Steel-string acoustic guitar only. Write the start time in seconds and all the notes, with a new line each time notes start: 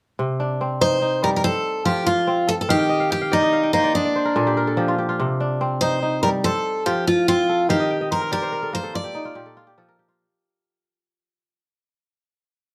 0.81 C5
1.24 A#4
1.36 A#4
1.44 A4
1.85 G4
2.06 F4
2.49 A4
2.61 A4
2.70 G4
3.12 G4
3.33 D#4
3.73 D#4
3.95 D4
5.81 C5
6.23 A#4
6.44 A4
6.86 G4
7.07 F4
7.28 F4
7.70 G4
8.12 A#4
8.33 A#4
8.75 C5
8.95 D5